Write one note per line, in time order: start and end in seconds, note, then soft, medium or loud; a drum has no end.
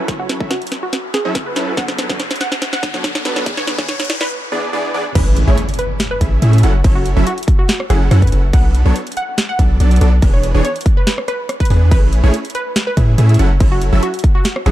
0.00 riser medium
0.08 0.38 F#3 medium
0.08 0.38 C#4 medium
0.08 0.38 E4 medium
0.08 0.38 A4 medium
0.08 0.38 C#5 loud
0.08 kick loud
0.08 snare medium
0.08 closed hi-hat medium
0.19 0.43 F#4 loud
0.29 snare medium
0.29 closed hi-hat medium
0.40 0.49 F#3 loud
0.40 0.49 C#4 medium
0.40 0.49 E4 medium
0.40 0.49 A4 medium
0.40 0.49 E5 loud
0.40 kick loud
0.51 0.74 F#4 loud
0.51 snare medium
0.51 closed hi-hat medium
0.62 closed hi-hat soft
0.67 closed hi-hat medium
0.72 snare medium
0.72 closed hi-hat medium
0.83 1.06 F#4 medium
0.93 snare medium
0.93 closed hi-hat medium
1.14 1.38 G#4 loud
1.14 snare medium
1.14 closed hi-hat medium
1.25 1.54 F#3 medium
1.25 1.54 C#4 medium
1.25 1.54 E4 medium
1.25 1.54 A4 medium
1.25 1.54 E5 medium
1.35 kick loud
1.35 snare medium
1.35 closed hi-hat medium
1.46 1.70 B4 medium
1.56 1.75 F#3 loud
1.56 1.75 C#4 medium
1.56 1.75 E4 medium
1.56 1.75 A4 medium
1.56 1.75 B4 loud
1.56 snare loud
1.56 closed hi-hat medium
1.77 2.07 F#3 medium
1.77 2.07 B3 medium
1.77 2.07 D4 medium
1.77 2.07 B4 loud
1.77 1.93 F#5 loud
1.77 kick loud
1.77 snare medium
1.77 closed hi-hat medium
1.88 snare medium
1.98 snare medium
1.98 closed hi-hat medium
2.09 2.18 F#3 loud
2.09 2.18 B3 medium
2.09 2.18 D4 medium
2.09 2.18 A4 medium
2.09 2.18 C#5 loud
2.09 kick loud
2.09 snare medium
2.20 snare loud
2.20 closed hi-hat medium
2.31 snare medium
2.31 closed hi-hat soft
2.36 closed hi-hat medium
2.41 2.64 F#5 loud
2.41 snare loud
2.41 closed hi-hat medium
2.52 snare medium
2.62 snare medium
2.62 closed hi-hat medium
2.73 2.96 F#5 loud
2.73 snare medium
2.83 kick loud
2.83 snare loud
2.83 closed hi-hat medium
2.94 3.23 F#3 medium
2.94 3.23 B3 medium
2.94 3.23 D4 medium
2.94 3.23 A4 medium
2.94 3.23 C#5 medium
2.94 snare medium
3.04 kick medium
3.04 snare loud
3.04 closed hi-hat medium
3.15 snare medium
3.25 3.44 F#3 loud
3.25 3.44 B3 medium
3.25 3.44 D4 medium
3.25 3.44 A4 medium
3.25 3.44 B4 loud
3.25 snare loud
3.25 closed hi-hat medium
3.36 snare medium
3.46 3.76 G#4 medium
3.46 kick loud
3.46 snare medium
3.46 closed hi-hat medium
3.57 3.81 C#5 medium
3.57 snare medium
3.67 snare loud
3.67 closed hi-hat medium
3.78 3.87 E3 loud
3.78 3.87 B3 loud
3.78 3.87 D4 medium
3.78 3.87 G#4 medium
3.78 3.87 C#5 loud
3.78 kick loud
3.78 snare medium
3.89 4.12 C#5 medium
3.89 snare loud
3.89 closed hi-hat medium
4.00 snare medium
4.00 closed hi-hat medium
4.05 closed hi-hat medium
4.10 snare loud
4.10 closed hi-hat medium
4.21 4.31 B4 loud
4.21 snare medium
4.52 4.71 E3 medium
4.52 4.71 B3 medium
4.52 4.71 D4 medium
4.52 4.71 G#4 medium
4.52 4.71 D5 loud
4.73 4.92 E3 medium
4.73 4.92 B3 medium
4.73 4.92 D4 medium
4.73 4.92 G#4 medium
4.73 4.92 D5 loud
4.94 5.04 E3 medium
4.94 5.04 B3 medium
4.94 5.04 D4 medium
4.94 5.04 G#4 medium
4.94 5.04 D5 medium
5.15 5.45 A1 loud
5.15 5.45 A3 medium
5.15 5.45 C#4 medium
5.15 5.45 E4 medium
5.15 5.45 G#4 medium
5.15 5.31 B4 loud
5.15 5.45 B4 loud
5.15 kick loud
5.15 closed hi-hat medium
5.15 crash loud
5.15 crash soft
5.15 impact medium
5.36 closed hi-hat medium
5.48 5.54 A1 loud
5.48 5.56 A3 loud
5.48 5.56 C#4 medium
5.48 5.56 E4 medium
5.48 5.56 G#4 medium
5.48 5.56 C#5 loud
5.58 closed hi-hat medium
5.69 closed hi-hat medium
5.74 closed hi-hat medium
5.79 6.02 B4 loud
5.79 closed hi-hat medium
6.00 snare loud
6.00 closed hi-hat medium
6.11 6.34 B4 loud
6.21 6.40 A1 loud
6.21 6.40 A3 medium
6.21 6.40 C#4 medium
6.21 6.40 E4 medium
6.21 6.40 G#4 medium
6.21 6.40 E5 loud
6.21 kick medium
6.21 closed hi-hat medium
6.42 6.65 A2 loud
6.42 6.61 A3 medium
6.42 6.61 C#4 medium
6.42 6.61 E4 medium
6.42 6.61 G#4 medium
6.42 6.61 E5 loud
6.42 closed hi-hat medium
6.53 closed hi-hat medium
6.58 closed hi-hat medium
6.63 6.82 F#1 loud
6.63 6.73 F#3 medium
6.63 6.73 C#4 medium
6.63 6.73 E4 medium
6.63 6.73 A4 medium
6.63 6.73 F#5 medium
6.63 closed hi-hat medium
6.84 7.14 F#1 medium
6.84 7.14 F#3 medium
6.84 7.14 C#4 medium
6.84 7.14 E4 medium
6.84 7.14 A4 medium
6.84 7.14 C#5 loud
6.84 kick loud
6.84 closed hi-hat medium
6.84 crash soft
6.95 7.19 F#4 medium
7.06 closed hi-hat medium
7.17 7.23 F#1 loud
7.17 7.25 F#3 loud
7.17 7.25 C#4 medium
7.17 7.25 E4 loud
7.17 7.25 A4 medium
7.17 7.25 E5 loud
7.27 7.50 F#4 loud
7.27 closed hi-hat medium
7.38 closed hi-hat medium
7.43 closed hi-hat medium
7.48 kick loud
7.48 closed hi-hat medium
7.59 7.82 F#4 medium
7.69 snare loud
7.69 closed hi-hat medium
7.80 cross-stick medium
7.90 8.09 F#1 medium
7.90 8.09 F#3 medium
7.90 8.09 C#4 medium
7.90 8.09 E4 medium
7.90 8.14 G#4 loud
7.90 8.09 A4 medium
7.90 8.09 F#5 loud
7.90 cross-stick medium
7.90 closed hi-hat medium
8.11 8.30 F#2 loud
8.11 8.30 F#3 medium
8.11 8.30 C#4 medium
8.11 8.30 E4 medium
8.11 8.30 A4 medium
8.11 8.30 F#5 loud
8.11 cross-stick medium
8.11 closed hi-hat medium
8.22 8.46 B4 loud
8.22 kick medium
8.22 closed hi-hat medium
8.27 closed hi-hat medium
8.32 8.51 F#1 loud
8.32 8.42 F#3 medium
8.32 8.42 C#4 medium
8.32 8.42 E4 medium
8.32 8.42 A4 medium
8.32 8.42 F#5 medium
8.32 closed hi-hat medium
8.53 8.83 B1 loud
8.53 8.83 F#3 medium
8.53 8.83 B3 medium
8.53 8.83 D4 medium
8.53 8.83 A4 medium
8.53 8.83 B4 loud
8.53 8.69 F#5 loud
8.53 kick loud
8.53 closed hi-hat medium
8.53 crash soft
8.75 closed hi-hat medium
8.86 8.92 B1 loud
8.86 8.94 F#3 loud
8.86 8.94 B3 medium
8.86 8.94 D4 medium
8.86 8.94 A4 medium
8.86 8.94 C#5 loud
8.96 closed hi-hat medium
9.07 closed hi-hat medium
9.12 closed hi-hat medium
9.17 9.40 F#5 loud
9.17 closed hi-hat medium
9.38 snare loud
9.38 closed hi-hat medium
9.49 9.72 F#5 loud
9.59 9.78 B1 medium
9.59 9.78 F#3 medium
9.59 9.78 B3 medium
9.59 9.78 D4 medium
9.59 9.78 A4 medium
9.59 9.78 D5 loud
9.59 kick medium
9.59 closed hi-hat medium
9.80 9.99 B1 loud
9.80 9.99 F#3 medium
9.80 9.99 B3 medium
9.80 9.99 D4 medium
9.80 9.99 A4 medium
9.80 9.99 D5 loud
9.80 closed hi-hat medium
9.91 closed hi-hat soft
9.96 closed hi-hat medium
10.01 10.20 B1 loud
10.01 10.11 F#3 medium
10.01 10.11 B3 medium
10.01 10.11 D4 medium
10.01 10.11 A4 medium
10.01 10.11 D5 medium
10.01 closed hi-hat medium
10.22 10.52 E3 medium
10.22 10.52 B3 medium
10.22 10.52 D4 medium
10.22 10.52 G#4 medium
10.22 10.52 B4 loud
10.22 kick loud
10.22 closed hi-hat medium
10.22 crash soft
10.34 10.57 C#5 medium
10.43 closed hi-hat medium
10.55 10.61 E1 loud
10.55 10.63 E3 loud
10.55 10.63 B3 medium
10.55 10.64 D4 medium
10.55 10.63 G#4 medium
10.55 10.63 C#5 loud
10.65 10.88 C#5 medium
10.65 closed hi-hat medium
10.76 closed hi-hat soft
10.81 closed hi-hat medium
10.86 kick loud
10.86 closed hi-hat medium
10.97 11.20 B4 medium
11.07 snare loud
11.07 closed hi-hat medium
11.18 cross-stick medium
11.28 11.52 B4 loud
11.28 cross-stick medium
11.28 closed hi-hat medium
11.49 cross-stick medium
11.49 closed hi-hat medium
11.60 11.84 B4 loud
11.60 kick medium
11.60 closed hi-hat soft
11.65 closed hi-hat medium
11.70 11.93 E2 loud
11.70 11.89 E3 medium
11.70 11.89 B3 medium
11.70 11.89 D4 medium
11.70 11.89 G#4 medium
11.70 11.89 B4 loud
11.70 open hi-hat medium
11.91 12.21 A1 loud
11.91 12.21 A3 loud
11.91 12.21 C#4 medium
11.91 12.21 E4 medium
11.91 12.21 G#4 medium
11.91 12.21 B4 loud
11.91 12.07 B4 loud
11.91 kick loud
11.91 closed hi-hat medium
11.91 crash soft
12.13 closed hi-hat medium
12.24 12.31 A1 loud
12.24 12.32 A3 loud
12.24 12.32 C#4 medium
12.24 12.32 E4 medium
12.24 12.32 G#4 medium
12.24 12.32 C#5 loud
12.34 closed hi-hat medium
12.45 closed hi-hat soft
12.50 closed hi-hat medium
12.55 12.78 B4 medium
12.55 closed hi-hat medium
12.76 snare loud
12.76 closed hi-hat medium
12.87 13.10 B4 loud
12.97 13.16 A2 loud
12.97 13.16 A3 medium
12.97 13.16 C#4 medium
12.97 13.16 E4 medium
12.97 13.16 G#4 medium
12.97 13.16 E5 loud
12.97 kick medium
12.97 closed hi-hat medium
13.18 13.37 A2 loud
13.18 13.37 A3 medium
13.18 13.37 C#4 medium
13.18 13.37 E4 medium
13.18 13.37 G#4 medium
13.18 13.37 E5 loud
13.18 closed hi-hat medium
13.29 closed hi-hat soft
13.34 closed hi-hat medium
13.39 13.58 F#1 medium
13.39 13.49 F#3 medium
13.39 13.49 C#4 medium
13.39 13.49 E4 medium
13.39 13.49 A4 medium
13.39 13.49 F#5 medium
13.39 closed hi-hat medium
13.60 13.90 F#1 loud
13.60 13.90 F#3 medium
13.60 13.90 C#4 medium
13.60 13.90 E4 medium
13.60 13.90 A4 medium
13.60 13.90 C#5 loud
13.60 kick loud
13.60 closed hi-hat medium
13.60 crash soft
13.72 13.95 F#4 loud
13.82 closed hi-hat medium
13.93 13.99 F#1 loud
13.93 14.02 F#3 loud
13.93 14.02 C#4 medium
13.93 14.02 E4 medium
13.93 14.02 A4 medium
13.93 14.02 E5 loud
14.03 14.26 F#4 medium
14.03 closed hi-hat medium
14.14 closed hi-hat soft
14.19 closed hi-hat medium
14.24 kick loud
14.24 closed hi-hat medium
14.35 14.58 F#4 medium
14.45 snare loud
14.45 closed hi-hat medium
14.56 cross-stick medium
14.66 14.71 F#1 medium
14.66 14.71 F#3 medium
14.66 14.71 C#4 medium
14.66 14.71 E4 medium
14.66 14.71 G#4 loud
14.66 14.71 A4 medium
14.66 14.71 F#5 loud
14.66 cross-stick medium
14.66 closed hi-hat medium